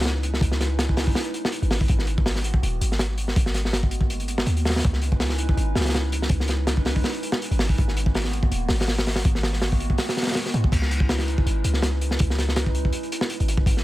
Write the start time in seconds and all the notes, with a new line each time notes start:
Already playing: C#2
0.01 snare, open hi-hat
0.05 snare, closed hi-hat
0.23 closed hi-hat
0.34 snare
0.41 C#2 G#3 C#4 D#4 E4 B4, kick, closed hi-hat
0.52 snare
0.61 snare, closed hi-hat
0.79 snare, closed hi-hat
0.89 kick
0.97 snare, open hi-hat
1.07 E2, kick
1.15 snare, open hi-hat
1.25 closed hi-hat
1.34 closed hi-hat
1.45 snare
1.52 closed hi-hat
1.62 G#1, closed hi-hat
1.71 snare, open hi-hat
1.81 kick
1.88 G#1 D#3 G#3 A#3 B3 F#4, kick, closed hi-hat
1.99 snare
2.07 closed hi-hat
2.18 kick
2.26 snare, open hi-hat
2.35 snare
2.44 closed hi-hat
2.54 B1, kick
2.63 D#1, closed hi-hat
2.81 G#1, closed hi-hat
2.92 snare
2.99 snare, closed hi-hat
3.18 closed hi-hat
3.28 snare
3.36 G#1 D#3 G#3 A#3 B3 F#4, kick, closed hi-hat
3.46 snare
3.54 snare, closed hi-hat
3.65 snare
3.73 snare, closed hi-hat
3.83 kick
3.91 closed hi-hat
4.01 B1, kick
4.10 F#1, closed hi-hat
4.20 G#1, closed hi-hat
4.28 closed hi-hat
4.38 snare
4.46 D#2, closed hi-hat
4.57 closed hi-hat
4.65 snare, open hi-hat
4.70 snare, open hi-hat
4.75 snare, open hi-hat
4.79 snare, closed hi-hat, open hi-hat
4.83 C#2 G#3 C#4 D#4 E4 B4, kick
4.93 snare
5.02 closed hi-hat
5.12 kick
5.20 snare, open hi-hat
5.29 snare
5.38 closed hi-hat
5.49 E2, kick
5.57 G#1, closed hi-hat
5.75 C#2, snare, open hi-hat
5.81 snare, open hi-hat
5.85 snare, open hi-hat
5.89 snare, open hi-hat
5.94 snare, closed hi-hat
6.12 closed hi-hat
6.22 snare
6.29 C#2 G#3 C#4 D#4 E4 B4, kick, closed hi-hat
6.40 snare
6.48 snare, closed hi-hat
6.67 snare, closed hi-hat
6.77 kick
6.85 snare, open hi-hat
6.96 E2, kick
7.04 snare, open hi-hat
7.14 closed hi-hat
7.23 closed hi-hat
7.32 snare
7.42 closed hi-hat
7.51 G#1, closed hi-hat
7.59 snare, open hi-hat
7.69 kick
7.78 G#1 D#3 G#3 A#3 B3 F#4, kick, closed hi-hat
7.88 snare
7.97 closed hi-hat
8.06 kick
8.14 snare, open hi-hat
8.24 snare
8.33 closed hi-hat
8.43 B1, kick
8.51 D#1, closed hi-hat
8.69 G#1, snare, open hi-hat
8.80 snare, open hi-hat
8.88 snare, open hi-hat
8.98 snare, open hi-hat
9.06 snare, open hi-hat
9.16 snare, open hi-hat
9.25 G#1 D#3 G#3 A#3 B3 F#4, kick, closed hi-hat
9.35 snare
9.43 snare, open hi-hat
9.53 snare
9.62 snare, open hi-hat
9.72 kick
9.80 closed hi-hat
9.90 B1, kick
9.98 snare, open hi-hat
10.08 snare, open hi-hat
10.17 D#3 G#3 A#3 B3 F#4, snare, open hi-hat
10.22 snare, open hi-hat
10.27 snare, open hi-hat
10.31 snare, open hi-hat
10.35 snare, open hi-hat
10.46 snare
10.54 G#2, closed hi-hat
10.64 F#1, kick
10.72 C#2 G#3 C#4 D#4 E4 B4, kick, closed hi-hat, crash
10.82 snare
10.91 closed hi-hat
11.00 kick
11.09 snare, open hi-hat
11.19 snare
11.28 closed hi-hat
11.38 E2, kick
11.46 G#1, closed hi-hat
11.64 C#2, closed hi-hat
11.74 snare
11.82 snare, closed hi-hat
12.01 closed hi-hat
12.11 snare
12.19 C#2 G#3 C#4 D#4 E4 B4, kick, closed hi-hat
12.30 snare
12.38 snare, closed hi-hat
12.49 snare
12.56 snare, closed hi-hat
12.66 kick
12.75 closed hi-hat
12.85 E2, kick
12.93 closed hi-hat
13.03 closed hi-hat
13.12 closed hi-hat
13.21 snare
13.30 closed hi-hat
13.40 G#1, closed hi-hat
13.48 closed hi-hat
13.57 kick
13.66 G#1 D#3 G#3 A#3 B3 F#4, kick, closed hi-hat
13.77 snare